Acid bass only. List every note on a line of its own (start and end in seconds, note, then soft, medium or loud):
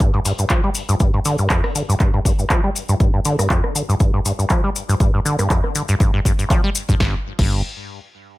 0.00 0.11 G2 medium
0.14 0.20 G2 loud
0.25 0.33 G2 medium
0.39 0.45 G2 medium
0.50 0.61 F3 medium
0.64 0.70 G3 loud
0.89 0.95 G2 loud
1.00 1.11 G2 medium
1.14 1.20 G2 loud
1.25 1.36 D3 loud
1.39 1.48 G2 medium
1.50 1.61 F2 medium
1.75 1.83 D3 medium
1.89 1.95 G2 loud
2.00 2.11 G2 medium
2.14 2.20 G2 loud
2.25 2.33 G2 medium
2.39 2.45 G2 medium
2.50 2.61 F3 medium
2.64 2.70 G3 loud
2.89 2.95 G2 loud
3.00 3.11 G2 medium
3.14 3.20 G2 loud
3.25 3.36 D3 loud
3.39 3.48 G2 medium
3.50 3.61 F2 medium
3.75 3.83 D3 medium
3.89 3.95 G2 loud
4.00 4.11 G2 medium
4.14 4.20 G2 loud
4.25 4.33 G2 medium
4.39 4.45 G2 medium
4.50 4.61 F3 medium
4.64 4.70 G3 loud
4.89 4.95 G2 loud
5.00 5.11 G2 medium
5.14 5.20 G2 loud
5.25 5.36 D3 loud
5.39 5.48 G2 medium
5.50 5.61 F2 medium
5.75 5.83 D3 medium
5.89 5.95 G2 loud
6.00 6.11 G2 medium
6.14 6.20 G2 loud
6.25 6.33 G2 medium
6.39 6.45 G2 medium
6.50 6.61 F3 medium
6.64 6.70 G3 loud
6.89 6.95 G2 loud
7.00 7.15 G2 medium
7.39 7.62 G2 medium